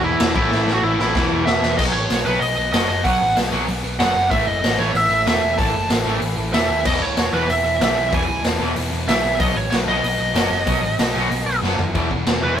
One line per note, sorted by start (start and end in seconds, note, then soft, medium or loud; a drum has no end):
0.00 0.14 E1 medium
0.00 0.34 E2 medium
0.00 0.34 B2 loud
0.00 0.35 E3 loud
0.00 0.35 E3 medium
0.04 0.36 E2 medium
0.04 0.35 B2 loud
0.04 0.35 E4 loud
0.20 0.33 E1 loud
0.20 snare loud
0.20 crash medium
0.35 0.48 A1 medium
0.35 0.81 A2 medium
0.35 0.83 E3 medium
0.35 0.83 A3 medium
0.35 0.73 E4 loud
0.35 kick loud
0.51 0.64 A1 medium
0.51 snare medium
0.67 0.80 A1 medium
0.67 snare medium
0.73 0.83 F#4 loud
0.82 0.96 A1 medium
0.82 1.13 A2 medium
0.82 1.14 E3 medium
0.82 1.15 A3 medium
0.82 1.00 E4 medium
0.99 1.12 A1 medium
0.99 1.44 E4 medium
0.99 snare medium
1.14 1.28 E1 loud
1.14 1.61 E2 medium
1.14 1.61 B2 loud
1.14 1.60 E3 loud
1.14 kick loud
1.14 snare medium
1.31 1.44 E1 medium
1.45 1.59 E1 loud
1.45 1.75 E5 loud
1.45 snare loud
1.61 1.75 E1 medium
1.61 1.78 E2 medium
1.61 1.76 B2 medium
1.61 1.77 E3 medium
1.61 snare loud
1.77 1.91 B1 loud
1.77 1.94 B2 medium
1.77 1.94 F#3 loud
1.77 1.93 B3 loud
1.77 1.82 D#5 loud
1.77 kick loud
1.77 crash loud
1.93 2.07 A1 medium
1.93 2.08 B2 medium
1.93 2.09 F#3 loud
1.93 2.09 B3 medium
1.93 2.25 C#5 medium
2.08 2.23 B1 medium
2.08 2.26 B2 medium
2.08 2.26 F#3 medium
2.08 2.25 B3 loud
2.08 snare loud
2.08 open hi-hat medium
2.25 2.38 B1 medium
2.25 2.39 B2 medium
2.25 2.40 F#3 medium
2.25 2.40 B3 medium
2.25 2.40 B4 medium
2.39 2.54 B1 medium
2.39 2.56 B2 loud
2.39 2.55 F#3 medium
2.39 2.55 B3 medium
2.39 2.71 D#5 medium
2.39 open hi-hat medium
2.56 2.70 B1 medium
2.56 2.71 B2 medium
2.56 2.71 F#3 medium
2.56 2.72 B3 loud
2.72 2.86 F#1 medium
2.72 2.88 B2 medium
2.72 2.88 F#3 medium
2.72 2.87 B3 medium
2.72 3.06 D#5 loud
2.72 snare loud
2.72 open hi-hat medium
2.88 3.02 F#1 medium
2.88 3.03 B2 medium
2.88 3.03 F#3 medium
2.88 3.04 B3 medium
3.04 3.18 B1 medium
3.04 3.20 B2 medium
3.04 3.20 F#3 medium
3.04 3.19 B3 loud
3.04 3.34 F#5 loud
3.04 kick loud
3.04 open hi-hat medium
3.20 3.34 A1 medium
3.20 3.34 B2 medium
3.20 3.34 F#3 medium
3.20 3.35 B3 loud
3.35 3.50 B1 medium
3.35 3.51 B2 medium
3.35 3.51 F#3 medium
3.35 3.50 B3 medium
3.35 snare medium
3.35 open hi-hat medium
3.51 3.65 B1 medium
3.51 3.66 B2 medium
3.51 3.66 F#3 medium
3.51 3.67 B3 medium
3.67 3.81 B1 medium
3.67 3.83 B2 loud
3.67 3.83 F#3 medium
3.67 3.83 B3 loud
3.67 open hi-hat medium
3.84 3.97 B1 medium
3.84 3.98 B2 medium
3.84 3.98 F#3 medium
3.84 3.99 B3 loud
3.99 4.13 F#1 loud
3.99 4.15 B2 medium
3.99 4.15 F#3 medium
3.99 4.14 B3 medium
3.99 4.29 F#5 loud
3.99 snare loud
3.99 open hi-hat medium
4.15 4.29 F#1 medium
4.15 4.30 B2 medium
4.15 4.30 F#3 medium
4.15 4.30 B3 medium
4.30 4.45 A1 loud
4.30 4.46 A2 loud
4.30 4.46 E3 loud
4.30 4.45 A3 loud
4.30 4.47 E5 loud
4.30 kick loud
4.30 open hi-hat soft
4.45 4.60 F#1 medium
4.45 4.62 A2 medium
4.45 4.62 E3 medium
4.45 4.63 A3 medium
4.45 4.79 D#5 medium
4.62 4.76 A1 medium
4.62 4.79 A2 medium
4.62 4.78 E3 medium
4.62 4.78 A3 loud
4.62 snare loud
4.62 open hi-hat medium
4.78 4.92 A1 medium
4.78 4.94 A2 medium
4.78 4.94 E3 medium
4.78 4.94 A3 medium
4.78 4.96 C#5 medium
4.94 5.07 A1 medium
4.94 5.10 A2 medium
4.94 5.11 E3 loud
4.94 5.09 A3 loud
4.94 5.26 E5 medium
4.94 open hi-hat medium
5.10 5.23 A1 medium
5.10 5.25 A2 medium
5.10 5.27 E3 medium
5.10 5.26 A3 loud
5.26 5.40 E1 loud
5.26 5.42 A2 medium
5.26 5.42 E3 medium
5.26 5.41 A3 medium
5.26 5.57 E5 loud
5.26 snare loud
5.26 open hi-hat medium
5.42 5.55 E1 medium
5.42 5.57 A2 medium
5.42 5.58 E3 medium
5.42 5.58 A3 medium
5.58 5.72 A1 loud
5.58 5.73 A2 loud
5.58 5.74 E3 loud
5.58 5.72 A3 loud
5.58 5.88 A5 loud
5.58 kick loud
5.58 open hi-hat medium
5.74 5.87 F#1 medium
5.74 5.88 A2 medium
5.74 5.90 E3 medium
5.74 5.89 A3 loud
5.89 6.03 A1 loud
5.89 6.04 A2 medium
5.89 6.05 E3 medium
5.89 6.03 A3 medium
5.89 snare loud
5.89 open hi-hat medium
6.05 6.19 A1 medium
6.05 6.20 A2 medium
6.05 6.21 E3 medium
6.05 6.21 A3 medium
6.21 6.34 A1 medium
6.21 6.36 A2 medium
6.21 6.37 E3 loud
6.21 6.35 A3 loud
6.21 open hi-hat medium
6.37 6.51 A1 medium
6.37 6.51 A2 medium
6.37 6.52 E3 loud
6.37 6.52 A3 loud
6.52 6.67 E1 medium
6.52 6.68 A2 medium
6.52 6.68 E3 medium
6.52 6.67 A3 medium
6.52 6.86 E5 loud
6.52 snare loud
6.52 open hi-hat medium
6.68 6.82 D#2 medium
6.68 6.84 A2 medium
6.68 6.84 E3 medium
6.68 6.84 A3 medium
6.84 6.98 E1 loud
6.84 7.00 E2 loud
6.84 6.99 B2 medium
6.84 6.99 E3 loud
6.84 7.02 D#5 loud
6.84 kick loud
6.84 crash medium
7.00 7.14 C#2 medium
7.00 7.15 E2 medium
7.00 7.15 B2 medium
7.00 7.16 E3 medium
7.00 7.34 C#5 medium
7.16 7.30 E1 medium
7.16 7.32 E2 medium
7.16 7.31 B2 medium
7.16 7.31 E3 medium
7.16 snare loud
7.16 open hi-hat medium
7.32 7.46 E1 medium
7.32 7.45 E2 medium
7.32 7.46 B2 medium
7.32 7.46 E3 loud
7.32 7.50 B4 medium
7.46 7.62 E1 medium
7.46 7.63 E2 medium
7.46 7.63 B2 loud
7.46 7.62 E3 medium
7.46 7.81 E5 medium
7.46 open hi-hat medium
7.63 7.78 E1 medium
7.63 7.78 E2 medium
7.63 7.79 B2 medium
7.63 7.79 E3 loud
7.79 7.94 B1 loud
7.79 7.95 E2 medium
7.79 7.94 B2 medium
7.79 7.94 E3 medium
7.79 8.14 E5 loud
7.79 snare loud
7.79 open hi-hat medium
7.95 8.10 B1 medium
7.95 8.10 E2 medium
7.95 8.11 B2 medium
7.95 8.11 E3 loud
8.11 8.26 E1 loud
8.11 8.28 E2 loud
8.11 8.27 B2 loud
8.11 8.27 E3 loud
8.11 8.43 G#5 loud
8.11 kick loud
8.11 open hi-hat medium
8.28 8.41 C#2 medium
8.28 8.42 E2 medium
8.28 8.43 B2 medium
8.28 8.43 E3 loud
8.43 8.57 E1 medium
8.43 8.59 E2 medium
8.43 8.58 B2 medium
8.43 8.58 E3 medium
8.43 snare loud
8.43 open hi-hat medium
8.59 8.73 E1 medium
8.59 8.75 E2 medium
8.59 8.75 B2 medium
8.59 8.76 E3 loud
8.76 8.89 E1 medium
8.76 8.91 E2 loud
8.76 8.90 B2 loud
8.76 8.89 E3 loud
8.76 open hi-hat medium
8.91 9.05 E1 medium
8.91 9.06 E2 medium
8.91 9.06 B2 loud
8.91 9.07 E3 loud
9.07 9.21 B1 medium
9.07 9.22 E2 medium
9.07 9.22 B2 medium
9.07 9.21 E3 medium
9.07 9.38 E5 loud
9.07 snare loud
9.07 open hi-hat medium
9.22 9.37 B1 loud
9.22 9.39 E2 medium
9.22 9.37 B2 medium
9.22 9.38 E3 medium
9.38 9.53 B1 medium
9.38 9.55 B2 loud
9.38 9.54 F#3 loud
9.38 9.54 B3 loud
9.38 9.57 D#5 loud
9.38 kick loud
9.38 open hi-hat medium
9.54 9.69 A1 loud
9.54 9.70 B2 medium
9.54 9.70 F#3 medium
9.54 9.71 B3 loud
9.54 9.69 C#5 loud
9.70 9.85 B1 loud
9.70 9.87 B2 medium
9.70 9.87 F#3 medium
9.70 9.86 B3 medium
9.70 9.75 C#5 loud
9.70 snare loud
9.70 open hi-hat medium
9.86 10.01 B1 medium
9.86 10.02 B2 medium
9.86 10.02 F#3 medium
9.86 10.04 B3 loud
9.86 11.59 D#5 medium
10.03 10.16 B1 medium
10.03 10.18 B2 medium
10.03 10.18 F#3 loud
10.03 10.18 B3 loud
10.03 open hi-hat medium
10.18 10.32 B1 medium
10.18 10.33 B2 medium
10.18 10.33 F#3 medium
10.18 10.35 B3 loud
10.34 10.48 F#1 medium
10.34 10.50 B2 medium
10.34 10.50 F#3 medium
10.34 10.50 B3 medium
10.34 snare loud
10.34 open hi-hat medium
10.51 10.64 F#1 medium
10.51 10.65 B2 medium
10.51 10.66 F#3 medium
10.51 10.66 B3 medium
10.67 10.80 B1 loud
10.67 10.83 B2 loud
10.67 10.82 F#3 medium
10.67 10.82 B3 loud
10.67 kick loud
10.67 open hi-hat medium
10.82 10.96 A1 medium
10.82 10.98 B2 medium
10.82 10.99 F#3 loud
10.82 10.99 B3 loud
10.99 11.12 B1 medium
10.99 11.14 B2 medium
10.99 11.14 F#3 medium
10.99 11.13 B3 loud
10.99 snare loud
10.99 open hi-hat medium
11.14 11.28 B1 medium
11.14 11.28 B2 medium
11.14 11.29 F#3 medium
11.14 11.30 B3 loud
11.30 11.43 B1 loud
11.30 11.46 B2 loud
11.30 11.46 F#3 loud
11.30 11.45 B3 loud
11.30 open hi-hat medium
11.45 11.59 B1 medium
11.45 11.61 B2 medium
11.45 11.62 F#3 medium
11.45 11.62 B3 loud
11.62 11.75 F#1 medium
11.62 11.78 B2 medium
11.62 11.78 F#3 medium
11.62 11.77 B3 medium
11.62 snare medium
11.78 11.91 F#1 medium
11.78 11.93 B2 medium
11.78 11.94 F#3 medium
11.78 11.93 B3 medium
11.78 floor tom medium
11.94 12.09 E1 medium
11.94 12.10 E2 loud
11.94 12.09 B2 loud
11.94 12.09 E3 loud
11.94 kick loud
11.94 crash medium
12.10 12.25 E1 medium
12.10 12.25 E2 medium
12.10 12.26 B2 medium
12.10 12.27 E3 medium
12.10 kick medium
12.26 12.40 E1 medium
12.26 12.42 E2 medium
12.26 12.42 B2 medium
12.26 12.41 E3 medium
12.26 snare loud
12.26 crash medium
12.42 12.56 E1 medium
12.42 12.57 E2 medium
12.42 12.58 B2 medium
12.42 12.58 E3 loud
12.42 12.58 B4 loud